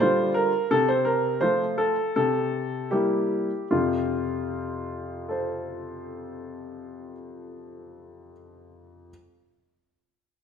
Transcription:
0.00 D3 G3 F4 C5
0.34 A#4
0.71 C3 A4
0.89 C5
1.05 A#4
1.41 F3 A3 F4 C5
1.78 A4
2.16 C3 A4
2.91 G3 A#3 E4 G4
3.71 F2 C3 F4
5.29 A4 C5

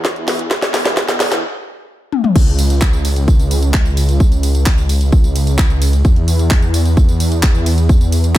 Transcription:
Already playing: E2
0.05 kick, snare, closed hi-hat
0.16 closed hi-hat
0.28 snare, open hi-hat
0.39 closed hi-hat
0.51 kick, snare, closed hi-hat
0.62 snare, closed hi-hat
0.74 snare, open hi-hat
0.86 snare, closed hi-hat
0.97 kick, snare, closed hi-hat
1.09 snare, closed hi-hat
1.20 snare, open hi-hat
1.32 snare, closed hi-hat
2.12 high tom
2.24 mid tom
2.36 C#2, kick, closed hi-hat, crash, tambourine
2.47 closed hi-hat
2.59 open hi-hat, ride, tambourine
2.70 closed hi-hat, tambourine
2.81 kick, clap, closed hi-hat, tambourine
2.93 closed hi-hat, tambourine
3.05 open hi-hat, ride, tambourine
3.16 closed hi-hat, tambourine
3.28 kick, closed hi-hat, tambourine
3.39 closed hi-hat, tambourine
3.51 open hi-hat, ride, tambourine
3.63 closed hi-hat, tambourine
3.74 kick, clap, tambourine
3.86 closed hi-hat, tambourine
3.97 open hi-hat, ride, tambourine
4.09 closed hi-hat, tambourine
4.20 kick, closed hi-hat, tambourine
4.32 closed hi-hat, tambourine
4.43 open hi-hat, ride, tambourine
4.55 closed hi-hat, tambourine
4.66 kick, clap, tambourine
4.78 closed hi-hat, tambourine
4.89 open hi-hat, ride, tambourine
5.01 closed hi-hat, tambourine
5.12 kick, closed hi-hat, tambourine
5.24 closed hi-hat, tambourine
5.36 open hi-hat, ride, tambourine
5.47 closed hi-hat, tambourine
5.58 kick, clap, closed hi-hat, tambourine
5.70 closed hi-hat, tambourine
5.82 open hi-hat, ride, tambourine
5.93 closed hi-hat, tambourine
6.05 E2, kick, closed hi-hat, tambourine
6.16 closed hi-hat
6.28 open hi-hat, ride, tambourine
6.39 closed hi-hat, tambourine
6.51 kick, clap, closed hi-hat, tambourine
6.62 closed hi-hat, tambourine
6.74 open hi-hat, ride, tambourine
6.86 closed hi-hat, tambourine
6.97 kick, closed hi-hat, tambourine
7.09 closed hi-hat, tambourine
7.20 open hi-hat, ride, tambourine
7.32 closed hi-hat, tambourine
7.43 kick, clap, tambourine
7.55 closed hi-hat, tambourine
7.66 open hi-hat, ride, tambourine
7.78 closed hi-hat, tambourine
7.89 kick, closed hi-hat, tambourine
8.01 closed hi-hat, tambourine
8.12 open hi-hat, ride, tambourine
8.24 closed hi-hat, tambourine

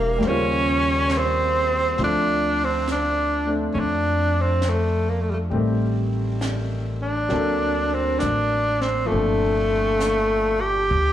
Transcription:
Already playing: E1 G3 A#3 D4 E4 F#4
0.18 D#2 G3 A#3
0.22 C5, brush sweep, snare
0.27 C#3 C#4 F4
1.10 snare, hi-hat pedal
1.18 C4
1.98 D2 F3 A3 C4 D4 F4, brush sweep, snare
2.04 D4
2.65 C4
2.88 snare, hi-hat pedal
2.92 D4
3.46 A3 C4 D4
3.74 F2 C#4, brush sweep
3.80 D4
4.41 C4
4.62 snare, hi-hat pedal
4.69 A3
5.10 A#3
5.21 A3
5.30 G3 A3
5.50 A1 G3 A3 C4, brush sweep
5.54 D#3 G4
6.41 snare, hi-hat pedal
7.02 D4
7.28 D2 F#3 A#3 C4 D4, brush sweep, snare
7.34 A4
7.94 C4
8.19 A1 D4, snare, hi-hat pedal
8.81 C4, snare
9.05 A#2 F3 A3
9.11 G1 C4 D4, brush sweep
9.16 A4
10.00 snare, hi-hat pedal
10.61 G4
10.91 D2, brush sweep

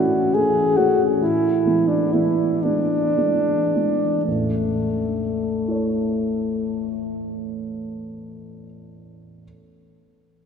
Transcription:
Already playing: A2 E3 A3 C#4 F#4
0.34 E3 A3 C#4 G#4
0.77 E3 A3 C#4 F#4
1.18 A2 E4
1.65 E3 G#3 B3
1.88 D4
2.13 E3 G#3 B3 E4
2.63 E3 G#3 B3 D4
3.16 E3 G#3 B3
3.75 E3 G#3 B3
4.25 A1 E2 A3
5.68 E4 A4 C#5

